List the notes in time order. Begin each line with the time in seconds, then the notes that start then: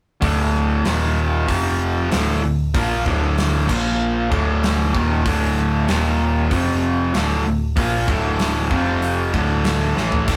0.21 D1 D2 A2 D3, kick, open hi-hat
0.55 snare
0.84 D#1 D#2 A#2 D#3, snare, open hi-hat
1.47 F1 F2 C3 F3, kick, open hi-hat
2.10 D1 D2 A2 D3, snare, open hi-hat
2.42 D1 D2 A2
2.74 A#1 A#2 F3 A#3, kick, open hi-hat
3.05 D1 D2 A2 D3, kick, snare
3.38 snare, open hi-hat
3.67 A#1 A#2 F3 A#3, kick, crash
4.30 D1 D2 A2 D3, kick
4.63 snare, open hi-hat
4.93 D#1 D#2 A#2 D#3, kick
5.25 D1 D2 A2 D3, kick, open hi-hat
5.57 snare
5.88 D#1 D#2 A#2 D#3, snare, open hi-hat
6.50 F1 F2 C3 F3, kick, open hi-hat
7.13 D1 D2 A2 D3, snare, open hi-hat
7.44 D1 D2 A2
7.76 A#1 A#2 F3 A#3, kick, open hi-hat
8.08 D1 D2 A2 D3, kick, snare
8.39 snare, open hi-hat
8.70 F1 F2 C3 F3, kick
9.02 open hi-hat
9.33 D1 D2 A2 D3, kick
9.64 snare, open hi-hat
9.95 A1 A2 E3 A3, snare
10.12 floor tom
10.27 D1 D2 A2 D3, kick, crash